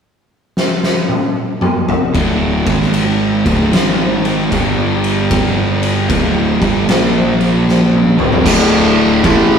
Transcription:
0.57 snare
0.83 snare
1.09 high tom
1.61 mid tom
1.89 floor tom
2.14 D1 D2 A2 D3, kick, ride
2.67 G#1 G#2 D#3 G#3, kick, ride
2.82 snare
2.94 ride
3.45 D1 D2 A2 D3, kick, ride
3.72 G#1 G#2 D#3 G#3, snare, ride
4.25 ride
4.52 G1 G2 D3 G3, kick, ride
5.04 ride
5.31 kick, ride
5.83 ride
6.09 D1 D2 A2 D3, kick, ride
6.61 G1 G2 D3 G3, kick, ride
6.88 A#1 A#2 F3 A#3, snare, ride
7.41 ride
7.68 snare
7.93 high tom
8.19 D1 D2 A2 D3, mid tom
8.32 floor tom
8.46 D1 D2 A2 D3, kick, crash
9.24 A1 A2 E3 A3, kick, crash

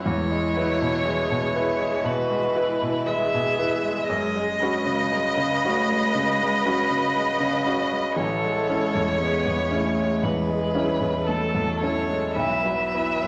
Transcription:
0.03 E2 G#3 E4 C#5
0.30 G#3
0.54 F#3 E4 B4
0.81 B2
1.03 E3 G#3 G#4
1.30 B2
1.54 E4 G#4 B4
1.80 G#3
2.04 B2 F#4 B4
2.30 G#3
2.56 E4 B4
2.82 B2
3.07 G#3 G#4 E5
3.34 B2
3.58 E4 B4
3.83 G#3
4.08 F#2 G#3 G#4 D#5
4.36 G#3
4.60 C#4 F#4 B4
4.86 C#3
5.12 F#3 G#3
5.37 C#3
5.64 A3 C#4 F#4
5.90 G#3
6.15 C#3 G#3
6.41 G#3
6.64 F#3 C#4 F#4
6.90 C#3
7.15 G#3
7.40 C#3
7.66 C#4 F#4
7.91 G#3
8.16 A1 E3 A4 C#5
8.44 G#3
8.69 G#3 C#4 E4
8.95 E2
9.19 G#3 B3 G#4
9.46 E2
9.71 A3 C#4 E4
9.98 G#3
10.23 E2 G#3 G#4 B4
10.49 G#3
10.75 F#3 C#4 E4
11.00 E2
11.27 A3 A4
11.55 E2
11.80 C#4 E4 C#5
12.10 G#3
12.35 B1 E3 B4 E5
12.65 F#3
12.94 B3 E4
13.22 F#2

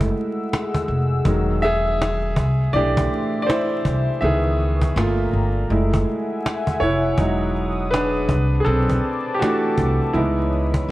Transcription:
Already playing: G#3 A3 E4 G#4 F#5 E6
0.01 cajon bass
0.17 cajon slap
0.53 cajon slap
0.74 cajon bass
0.88 F1, cajon slap
1.25 E1 D#3 F#3 G#3 D#6, cajon bass
1.62 G#4 E5, cajon slap
2.02 cajon slap
2.36 C2 A3 E5 C6 D6, cajon bass
2.73 B1 E3 A3 D4 G4 D5, cajon slap
2.97 cajon bass
3.13 cajon slap
3.42 D5
3.47 E4 C5, cajon slap
3.85 C2, cajon bass
4.21 C#2 D#3 E3 B3 G#4 B4 E5 C#6 D#6, cajon slap
4.60 cajon slap
4.82 cajon bass
4.95 G1 A3 A#3 F4 D5 G5 A#5, cajon slap
5.31 G1, cajon slap
5.70 F#1 G#3 A3 E4 E5 F#5 G#5, cajon slap
5.93 cajon bass
6.09 cajon slap
6.46 cajon slap
6.67 cajon bass
6.80 F1 E4 C#5, cajon slap
7.18 E1 F#3 G#3 D#4 G#4 D#6, cajon bass
7.56 cajon slap
7.91 D4 B4, cajon slap
8.29 C2 C4 A5 D6, cajon bass
8.60 G#4
8.65 B1 C4 A4, cajon slap
8.90 cajon bass
9.05 cajon slap
9.34 G4
9.39 E3 A3 D4 F#4, cajon slap
9.78 C2, cajon bass
10.13 C#2 E3 G#3 B3 D#4 E4 C#5 B5 D#6, cajon slap
10.53 cajon slap
10.74 cajon bass, cajon slap
10.88 G4

